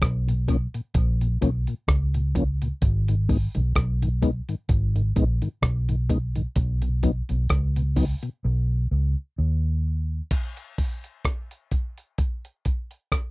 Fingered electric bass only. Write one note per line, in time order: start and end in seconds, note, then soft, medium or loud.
0.02 0.66 B1 loud
0.96 1.36 A#1 medium
1.43 1.65 B1 medium
1.88 2.71 C#2 loud
2.83 3.46 G#1 loud
3.56 3.74 B1 medium
3.76 4.40 B1 medium
4.70 5.11 G#1 medium
5.17 5.40 A#1 medium
5.63 6.45 B1 loud
6.57 7.21 B1 loud
7.30 7.48 B1 medium
7.50 8.14 C#2 loud
8.45 8.85 B1 loud
8.91 9.14 C#2 medium
9.38 10.20 D#2 medium